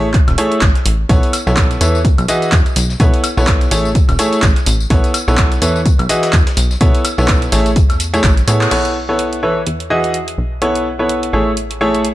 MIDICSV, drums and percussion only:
0, 0, Header, 1, 2, 480
1, 0, Start_track
1, 0, Tempo, 476190
1, 1103, Time_signature, 4, 2, 24, 8
1, 12238, End_track
2, 0, Start_track
2, 0, Title_t, "Drums"
2, 138, Note_on_c, 9, 39, 57
2, 142, Note_on_c, 9, 36, 118
2, 143, Note_on_c, 9, 42, 84
2, 239, Note_off_c, 9, 39, 0
2, 243, Note_off_c, 9, 36, 0
2, 244, Note_off_c, 9, 42, 0
2, 280, Note_on_c, 9, 42, 50
2, 280, Note_on_c, 9, 76, 81
2, 281, Note_on_c, 9, 38, 42
2, 381, Note_off_c, 9, 42, 0
2, 381, Note_off_c, 9, 76, 0
2, 382, Note_off_c, 9, 38, 0
2, 382, Note_on_c, 9, 46, 102
2, 383, Note_on_c, 9, 42, 65
2, 483, Note_off_c, 9, 46, 0
2, 484, Note_off_c, 9, 42, 0
2, 521, Note_on_c, 9, 42, 33
2, 618, Note_on_c, 9, 39, 109
2, 621, Note_off_c, 9, 42, 0
2, 623, Note_on_c, 9, 36, 105
2, 623, Note_on_c, 9, 38, 112
2, 623, Note_on_c, 9, 42, 85
2, 719, Note_off_c, 9, 39, 0
2, 723, Note_off_c, 9, 36, 0
2, 724, Note_off_c, 9, 38, 0
2, 724, Note_off_c, 9, 42, 0
2, 761, Note_on_c, 9, 38, 40
2, 761, Note_on_c, 9, 42, 46
2, 861, Note_off_c, 9, 42, 0
2, 862, Note_off_c, 9, 38, 0
2, 862, Note_on_c, 9, 46, 93
2, 863, Note_on_c, 9, 42, 65
2, 963, Note_off_c, 9, 46, 0
2, 964, Note_off_c, 9, 42, 0
2, 1103, Note_on_c, 9, 36, 115
2, 1103, Note_on_c, 9, 42, 69
2, 1106, Note_on_c, 9, 54, 41
2, 1203, Note_off_c, 9, 36, 0
2, 1204, Note_off_c, 9, 42, 0
2, 1207, Note_off_c, 9, 54, 0
2, 1241, Note_on_c, 9, 42, 46
2, 1244, Note_on_c, 9, 54, 22
2, 1342, Note_off_c, 9, 42, 0
2, 1343, Note_on_c, 9, 42, 67
2, 1343, Note_on_c, 9, 46, 100
2, 1343, Note_on_c, 9, 76, 82
2, 1345, Note_off_c, 9, 54, 0
2, 1346, Note_on_c, 9, 54, 76
2, 1444, Note_off_c, 9, 42, 0
2, 1444, Note_off_c, 9, 46, 0
2, 1444, Note_off_c, 9, 76, 0
2, 1447, Note_off_c, 9, 54, 0
2, 1481, Note_on_c, 9, 38, 55
2, 1484, Note_on_c, 9, 54, 31
2, 1579, Note_on_c, 9, 39, 109
2, 1582, Note_off_c, 9, 38, 0
2, 1583, Note_on_c, 9, 36, 100
2, 1583, Note_on_c, 9, 38, 107
2, 1583, Note_on_c, 9, 42, 73
2, 1583, Note_on_c, 9, 76, 79
2, 1584, Note_off_c, 9, 54, 0
2, 1586, Note_on_c, 9, 54, 43
2, 1680, Note_off_c, 9, 39, 0
2, 1684, Note_off_c, 9, 36, 0
2, 1684, Note_off_c, 9, 38, 0
2, 1684, Note_off_c, 9, 42, 0
2, 1684, Note_off_c, 9, 76, 0
2, 1687, Note_off_c, 9, 54, 0
2, 1721, Note_on_c, 9, 38, 35
2, 1721, Note_on_c, 9, 42, 47
2, 1724, Note_on_c, 9, 54, 21
2, 1822, Note_off_c, 9, 38, 0
2, 1822, Note_off_c, 9, 42, 0
2, 1823, Note_on_c, 9, 42, 64
2, 1823, Note_on_c, 9, 46, 92
2, 1825, Note_off_c, 9, 54, 0
2, 1826, Note_on_c, 9, 54, 79
2, 1924, Note_off_c, 9, 42, 0
2, 1924, Note_off_c, 9, 46, 0
2, 1927, Note_off_c, 9, 54, 0
2, 1964, Note_on_c, 9, 54, 32
2, 2063, Note_on_c, 9, 36, 111
2, 2063, Note_on_c, 9, 42, 84
2, 2064, Note_off_c, 9, 42, 0
2, 2064, Note_on_c, 9, 42, 73
2, 2065, Note_off_c, 9, 54, 0
2, 2066, Note_on_c, 9, 54, 41
2, 2164, Note_off_c, 9, 36, 0
2, 2164, Note_off_c, 9, 42, 0
2, 2167, Note_off_c, 9, 54, 0
2, 2201, Note_on_c, 9, 42, 49
2, 2201, Note_on_c, 9, 76, 80
2, 2204, Note_on_c, 9, 54, 21
2, 2302, Note_off_c, 9, 42, 0
2, 2302, Note_off_c, 9, 76, 0
2, 2302, Note_on_c, 9, 42, 65
2, 2303, Note_on_c, 9, 46, 100
2, 2305, Note_off_c, 9, 54, 0
2, 2306, Note_on_c, 9, 54, 75
2, 2403, Note_off_c, 9, 42, 0
2, 2404, Note_off_c, 9, 46, 0
2, 2407, Note_off_c, 9, 54, 0
2, 2442, Note_on_c, 9, 42, 33
2, 2444, Note_on_c, 9, 54, 33
2, 2540, Note_on_c, 9, 39, 104
2, 2542, Note_off_c, 9, 42, 0
2, 2542, Note_on_c, 9, 38, 114
2, 2542, Note_on_c, 9, 42, 85
2, 2543, Note_on_c, 9, 36, 97
2, 2544, Note_off_c, 9, 42, 0
2, 2544, Note_on_c, 9, 42, 72
2, 2545, Note_off_c, 9, 54, 0
2, 2546, Note_on_c, 9, 54, 44
2, 2640, Note_off_c, 9, 39, 0
2, 2643, Note_off_c, 9, 38, 0
2, 2644, Note_off_c, 9, 36, 0
2, 2645, Note_off_c, 9, 42, 0
2, 2647, Note_off_c, 9, 54, 0
2, 2681, Note_on_c, 9, 42, 46
2, 2684, Note_on_c, 9, 54, 22
2, 2782, Note_off_c, 9, 42, 0
2, 2783, Note_on_c, 9, 38, 48
2, 2783, Note_on_c, 9, 42, 64
2, 2783, Note_on_c, 9, 46, 92
2, 2785, Note_off_c, 9, 54, 0
2, 2786, Note_on_c, 9, 54, 75
2, 2883, Note_off_c, 9, 38, 0
2, 2883, Note_off_c, 9, 42, 0
2, 2884, Note_off_c, 9, 46, 0
2, 2887, Note_off_c, 9, 54, 0
2, 2921, Note_on_c, 9, 38, 36
2, 2924, Note_on_c, 9, 54, 33
2, 3021, Note_off_c, 9, 38, 0
2, 3022, Note_on_c, 9, 42, 88
2, 3023, Note_off_c, 9, 42, 0
2, 3023, Note_on_c, 9, 36, 110
2, 3023, Note_on_c, 9, 42, 75
2, 3025, Note_off_c, 9, 54, 0
2, 3026, Note_on_c, 9, 54, 43
2, 3124, Note_off_c, 9, 36, 0
2, 3124, Note_off_c, 9, 42, 0
2, 3127, Note_off_c, 9, 54, 0
2, 3161, Note_on_c, 9, 42, 50
2, 3164, Note_on_c, 9, 54, 22
2, 3262, Note_off_c, 9, 42, 0
2, 3262, Note_on_c, 9, 42, 64
2, 3263, Note_on_c, 9, 46, 94
2, 3263, Note_on_c, 9, 76, 84
2, 3264, Note_off_c, 9, 54, 0
2, 3265, Note_on_c, 9, 54, 81
2, 3363, Note_off_c, 9, 42, 0
2, 3363, Note_off_c, 9, 46, 0
2, 3363, Note_off_c, 9, 76, 0
2, 3366, Note_off_c, 9, 54, 0
2, 3401, Note_on_c, 9, 38, 51
2, 3403, Note_on_c, 9, 54, 33
2, 3499, Note_on_c, 9, 39, 109
2, 3501, Note_off_c, 9, 38, 0
2, 3502, Note_on_c, 9, 38, 112
2, 3502, Note_on_c, 9, 42, 86
2, 3503, Note_off_c, 9, 42, 0
2, 3503, Note_on_c, 9, 36, 93
2, 3503, Note_on_c, 9, 42, 77
2, 3503, Note_on_c, 9, 76, 78
2, 3504, Note_off_c, 9, 54, 0
2, 3506, Note_on_c, 9, 54, 43
2, 3600, Note_off_c, 9, 39, 0
2, 3603, Note_off_c, 9, 38, 0
2, 3604, Note_off_c, 9, 36, 0
2, 3604, Note_off_c, 9, 42, 0
2, 3604, Note_off_c, 9, 76, 0
2, 3606, Note_off_c, 9, 54, 0
2, 3640, Note_on_c, 9, 38, 49
2, 3641, Note_on_c, 9, 42, 47
2, 3643, Note_on_c, 9, 54, 21
2, 3741, Note_off_c, 9, 38, 0
2, 3742, Note_off_c, 9, 42, 0
2, 3743, Note_on_c, 9, 46, 87
2, 3744, Note_off_c, 9, 54, 0
2, 3745, Note_on_c, 9, 54, 84
2, 3843, Note_off_c, 9, 46, 0
2, 3846, Note_off_c, 9, 54, 0
2, 3883, Note_on_c, 9, 54, 34
2, 3982, Note_on_c, 9, 42, 88
2, 3983, Note_off_c, 9, 42, 0
2, 3983, Note_on_c, 9, 36, 112
2, 3983, Note_on_c, 9, 42, 72
2, 3984, Note_off_c, 9, 54, 0
2, 3985, Note_on_c, 9, 54, 44
2, 4083, Note_off_c, 9, 42, 0
2, 4084, Note_off_c, 9, 36, 0
2, 4086, Note_off_c, 9, 54, 0
2, 4120, Note_on_c, 9, 38, 43
2, 4120, Note_on_c, 9, 42, 50
2, 4120, Note_on_c, 9, 76, 78
2, 4123, Note_on_c, 9, 54, 23
2, 4221, Note_off_c, 9, 38, 0
2, 4221, Note_off_c, 9, 42, 0
2, 4221, Note_off_c, 9, 76, 0
2, 4222, Note_on_c, 9, 46, 96
2, 4223, Note_off_c, 9, 54, 0
2, 4223, Note_on_c, 9, 42, 70
2, 4224, Note_on_c, 9, 54, 79
2, 4323, Note_off_c, 9, 46, 0
2, 4324, Note_off_c, 9, 42, 0
2, 4325, Note_off_c, 9, 54, 0
2, 4360, Note_on_c, 9, 42, 34
2, 4363, Note_on_c, 9, 54, 32
2, 4458, Note_on_c, 9, 39, 108
2, 4461, Note_off_c, 9, 42, 0
2, 4462, Note_on_c, 9, 38, 114
2, 4462, Note_on_c, 9, 42, 88
2, 4463, Note_on_c, 9, 36, 100
2, 4464, Note_off_c, 9, 54, 0
2, 4465, Note_on_c, 9, 54, 44
2, 4558, Note_off_c, 9, 39, 0
2, 4563, Note_off_c, 9, 38, 0
2, 4563, Note_off_c, 9, 42, 0
2, 4564, Note_off_c, 9, 36, 0
2, 4565, Note_off_c, 9, 54, 0
2, 4600, Note_on_c, 9, 42, 49
2, 4601, Note_on_c, 9, 38, 40
2, 4602, Note_on_c, 9, 54, 22
2, 4700, Note_off_c, 9, 42, 0
2, 4701, Note_on_c, 9, 46, 86
2, 4702, Note_off_c, 9, 38, 0
2, 4702, Note_on_c, 9, 42, 69
2, 4703, Note_off_c, 9, 54, 0
2, 4704, Note_on_c, 9, 54, 82
2, 4802, Note_off_c, 9, 46, 0
2, 4803, Note_off_c, 9, 42, 0
2, 4805, Note_off_c, 9, 54, 0
2, 4843, Note_on_c, 9, 54, 36
2, 4942, Note_on_c, 9, 42, 75
2, 4943, Note_on_c, 9, 36, 105
2, 4944, Note_off_c, 9, 54, 0
2, 4945, Note_on_c, 9, 54, 42
2, 5043, Note_off_c, 9, 36, 0
2, 5043, Note_off_c, 9, 42, 0
2, 5046, Note_off_c, 9, 54, 0
2, 5080, Note_on_c, 9, 42, 54
2, 5083, Note_on_c, 9, 54, 22
2, 5181, Note_off_c, 9, 42, 0
2, 5182, Note_on_c, 9, 42, 66
2, 5182, Note_on_c, 9, 46, 97
2, 5182, Note_on_c, 9, 76, 82
2, 5183, Note_off_c, 9, 54, 0
2, 5185, Note_on_c, 9, 54, 80
2, 5283, Note_off_c, 9, 42, 0
2, 5283, Note_off_c, 9, 46, 0
2, 5283, Note_off_c, 9, 76, 0
2, 5286, Note_off_c, 9, 54, 0
2, 5321, Note_on_c, 9, 38, 56
2, 5323, Note_on_c, 9, 54, 34
2, 5418, Note_on_c, 9, 39, 113
2, 5421, Note_off_c, 9, 38, 0
2, 5422, Note_on_c, 9, 38, 113
2, 5422, Note_on_c, 9, 42, 83
2, 5422, Note_on_c, 9, 76, 73
2, 5423, Note_off_c, 9, 54, 0
2, 5423, Note_on_c, 9, 36, 96
2, 5425, Note_on_c, 9, 54, 45
2, 5519, Note_off_c, 9, 39, 0
2, 5523, Note_off_c, 9, 36, 0
2, 5523, Note_off_c, 9, 38, 0
2, 5523, Note_off_c, 9, 42, 0
2, 5523, Note_off_c, 9, 76, 0
2, 5526, Note_off_c, 9, 54, 0
2, 5561, Note_on_c, 9, 38, 36
2, 5561, Note_on_c, 9, 42, 52
2, 5563, Note_on_c, 9, 54, 22
2, 5661, Note_off_c, 9, 42, 0
2, 5662, Note_off_c, 9, 38, 0
2, 5663, Note_on_c, 9, 42, 64
2, 5663, Note_on_c, 9, 46, 89
2, 5664, Note_off_c, 9, 54, 0
2, 5665, Note_on_c, 9, 54, 84
2, 5763, Note_off_c, 9, 42, 0
2, 5763, Note_off_c, 9, 46, 0
2, 5766, Note_off_c, 9, 54, 0
2, 5803, Note_on_c, 9, 54, 36
2, 5902, Note_on_c, 9, 36, 108
2, 5902, Note_on_c, 9, 42, 85
2, 5903, Note_off_c, 9, 42, 0
2, 5903, Note_on_c, 9, 42, 79
2, 5904, Note_off_c, 9, 54, 0
2, 5906, Note_on_c, 9, 54, 46
2, 6003, Note_off_c, 9, 36, 0
2, 6004, Note_off_c, 9, 42, 0
2, 6006, Note_off_c, 9, 54, 0
2, 6041, Note_on_c, 9, 42, 52
2, 6041, Note_on_c, 9, 76, 76
2, 6044, Note_on_c, 9, 54, 23
2, 6142, Note_off_c, 9, 42, 0
2, 6142, Note_off_c, 9, 76, 0
2, 6142, Note_on_c, 9, 38, 101
2, 6142, Note_on_c, 9, 42, 78
2, 6143, Note_on_c, 9, 46, 97
2, 6145, Note_off_c, 9, 54, 0
2, 6146, Note_on_c, 9, 54, 78
2, 6243, Note_off_c, 9, 38, 0
2, 6243, Note_off_c, 9, 42, 0
2, 6244, Note_off_c, 9, 46, 0
2, 6247, Note_off_c, 9, 54, 0
2, 6280, Note_on_c, 9, 38, 97
2, 6280, Note_on_c, 9, 42, 73
2, 6281, Note_off_c, 9, 42, 0
2, 6281, Note_on_c, 9, 42, 36
2, 6283, Note_on_c, 9, 54, 34
2, 6379, Note_on_c, 9, 39, 107
2, 6381, Note_off_c, 9, 38, 0
2, 6382, Note_off_c, 9, 42, 0
2, 6383, Note_on_c, 9, 36, 96
2, 6383, Note_on_c, 9, 38, 102
2, 6383, Note_on_c, 9, 42, 79
2, 6384, Note_off_c, 9, 54, 0
2, 6385, Note_on_c, 9, 54, 45
2, 6480, Note_off_c, 9, 39, 0
2, 6483, Note_off_c, 9, 36, 0
2, 6484, Note_off_c, 9, 38, 0
2, 6484, Note_off_c, 9, 42, 0
2, 6486, Note_off_c, 9, 54, 0
2, 6521, Note_on_c, 9, 38, 100
2, 6521, Note_on_c, 9, 42, 51
2, 6524, Note_on_c, 9, 54, 22
2, 6622, Note_off_c, 9, 38, 0
2, 6622, Note_off_c, 9, 42, 0
2, 6623, Note_on_c, 9, 38, 52
2, 6623, Note_on_c, 9, 42, 64
2, 6623, Note_on_c, 9, 46, 87
2, 6624, Note_off_c, 9, 54, 0
2, 6625, Note_on_c, 9, 54, 80
2, 6723, Note_off_c, 9, 46, 0
2, 6724, Note_off_c, 9, 38, 0
2, 6724, Note_off_c, 9, 42, 0
2, 6726, Note_off_c, 9, 54, 0
2, 6761, Note_on_c, 9, 38, 38
2, 6763, Note_on_c, 9, 54, 35
2, 6861, Note_off_c, 9, 38, 0
2, 6862, Note_on_c, 9, 42, 88
2, 6863, Note_off_c, 9, 54, 0
2, 6863, Note_on_c, 9, 36, 111
2, 6865, Note_on_c, 9, 54, 43
2, 6963, Note_off_c, 9, 36, 0
2, 6963, Note_off_c, 9, 42, 0
2, 6966, Note_off_c, 9, 54, 0
2, 7000, Note_on_c, 9, 42, 42
2, 7001, Note_off_c, 9, 42, 0
2, 7001, Note_on_c, 9, 42, 55
2, 7003, Note_on_c, 9, 54, 22
2, 7102, Note_off_c, 9, 42, 0
2, 7102, Note_on_c, 9, 42, 66
2, 7103, Note_on_c, 9, 46, 103
2, 7103, Note_on_c, 9, 76, 78
2, 7104, Note_off_c, 9, 54, 0
2, 7105, Note_on_c, 9, 54, 78
2, 7203, Note_off_c, 9, 42, 0
2, 7203, Note_off_c, 9, 46, 0
2, 7203, Note_off_c, 9, 76, 0
2, 7206, Note_off_c, 9, 54, 0
2, 7240, Note_on_c, 9, 38, 55
2, 7243, Note_on_c, 9, 54, 35
2, 7338, Note_on_c, 9, 39, 116
2, 7341, Note_off_c, 9, 38, 0
2, 7342, Note_on_c, 9, 38, 109
2, 7342, Note_on_c, 9, 42, 81
2, 7342, Note_on_c, 9, 76, 72
2, 7343, Note_on_c, 9, 36, 97
2, 7344, Note_off_c, 9, 54, 0
2, 7345, Note_on_c, 9, 54, 47
2, 7439, Note_off_c, 9, 39, 0
2, 7443, Note_off_c, 9, 38, 0
2, 7443, Note_off_c, 9, 42, 0
2, 7443, Note_off_c, 9, 76, 0
2, 7444, Note_off_c, 9, 36, 0
2, 7446, Note_off_c, 9, 54, 0
2, 7480, Note_on_c, 9, 38, 48
2, 7480, Note_on_c, 9, 42, 52
2, 7483, Note_on_c, 9, 54, 21
2, 7581, Note_off_c, 9, 38, 0
2, 7581, Note_off_c, 9, 42, 0
2, 7582, Note_on_c, 9, 46, 91
2, 7584, Note_off_c, 9, 54, 0
2, 7585, Note_on_c, 9, 54, 83
2, 7683, Note_off_c, 9, 46, 0
2, 7686, Note_off_c, 9, 54, 0
2, 7720, Note_on_c, 9, 42, 37
2, 7723, Note_on_c, 9, 54, 33
2, 7821, Note_off_c, 9, 42, 0
2, 7822, Note_on_c, 9, 42, 78
2, 7823, Note_on_c, 9, 36, 115
2, 7824, Note_off_c, 9, 54, 0
2, 7825, Note_on_c, 9, 54, 43
2, 7923, Note_off_c, 9, 36, 0
2, 7923, Note_off_c, 9, 42, 0
2, 7926, Note_off_c, 9, 54, 0
2, 7960, Note_on_c, 9, 38, 44
2, 7961, Note_on_c, 9, 42, 54
2, 7961, Note_on_c, 9, 76, 75
2, 7964, Note_on_c, 9, 54, 23
2, 8061, Note_off_c, 9, 38, 0
2, 8062, Note_off_c, 9, 42, 0
2, 8062, Note_off_c, 9, 76, 0
2, 8062, Note_on_c, 9, 42, 69
2, 8063, Note_on_c, 9, 46, 103
2, 8064, Note_off_c, 9, 54, 0
2, 8066, Note_on_c, 9, 54, 77
2, 8163, Note_off_c, 9, 42, 0
2, 8164, Note_off_c, 9, 46, 0
2, 8167, Note_off_c, 9, 54, 0
2, 8202, Note_on_c, 9, 42, 38
2, 8205, Note_on_c, 9, 54, 34
2, 8303, Note_off_c, 9, 42, 0
2, 8303, Note_on_c, 9, 36, 102
2, 8303, Note_on_c, 9, 38, 104
2, 8303, Note_on_c, 9, 42, 77
2, 8304, Note_off_c, 9, 42, 0
2, 8304, Note_on_c, 9, 39, 102
2, 8304, Note_on_c, 9, 42, 80
2, 8305, Note_off_c, 9, 54, 0
2, 8307, Note_on_c, 9, 54, 43
2, 8403, Note_off_c, 9, 36, 0
2, 8404, Note_off_c, 9, 38, 0
2, 8405, Note_off_c, 9, 39, 0
2, 8405, Note_off_c, 9, 42, 0
2, 8407, Note_off_c, 9, 54, 0
2, 8440, Note_on_c, 9, 38, 43
2, 8441, Note_on_c, 9, 42, 54
2, 8444, Note_on_c, 9, 54, 23
2, 8541, Note_off_c, 9, 38, 0
2, 8542, Note_off_c, 9, 42, 0
2, 8544, Note_on_c, 9, 46, 88
2, 8545, Note_off_c, 9, 54, 0
2, 8546, Note_on_c, 9, 54, 81
2, 8645, Note_off_c, 9, 46, 0
2, 8647, Note_off_c, 9, 54, 0
2, 8681, Note_on_c, 9, 39, 78
2, 8684, Note_on_c, 9, 54, 34
2, 8782, Note_off_c, 9, 39, 0
2, 8783, Note_on_c, 9, 42, 70
2, 8783, Note_on_c, 9, 49, 71
2, 8785, Note_off_c, 9, 54, 0
2, 8884, Note_off_c, 9, 42, 0
2, 8884, Note_off_c, 9, 49, 0
2, 8921, Note_on_c, 9, 42, 47
2, 9022, Note_off_c, 9, 42, 0
2, 9263, Note_on_c, 9, 42, 69
2, 9364, Note_off_c, 9, 42, 0
2, 9401, Note_on_c, 9, 42, 47
2, 9502, Note_off_c, 9, 42, 0
2, 9743, Note_on_c, 9, 42, 72
2, 9844, Note_off_c, 9, 42, 0
2, 9880, Note_on_c, 9, 42, 46
2, 9981, Note_off_c, 9, 42, 0
2, 10120, Note_on_c, 9, 42, 34
2, 10221, Note_off_c, 9, 42, 0
2, 10222, Note_on_c, 9, 42, 69
2, 10323, Note_off_c, 9, 42, 0
2, 10360, Note_on_c, 9, 42, 46
2, 10461, Note_off_c, 9, 42, 0
2, 10702, Note_on_c, 9, 42, 66
2, 10803, Note_off_c, 9, 42, 0
2, 10841, Note_on_c, 9, 42, 47
2, 10942, Note_off_c, 9, 42, 0
2, 11183, Note_on_c, 9, 42, 71
2, 11284, Note_off_c, 9, 42, 0
2, 11321, Note_on_c, 9, 42, 46
2, 11421, Note_off_c, 9, 42, 0
2, 11662, Note_on_c, 9, 42, 67
2, 11763, Note_off_c, 9, 42, 0
2, 11800, Note_on_c, 9, 42, 47
2, 11901, Note_off_c, 9, 42, 0
2, 12041, Note_on_c, 9, 42, 33
2, 12141, Note_off_c, 9, 42, 0
2, 12142, Note_on_c, 9, 42, 69
2, 12238, Note_off_c, 9, 42, 0
2, 12238, End_track
0, 0, End_of_file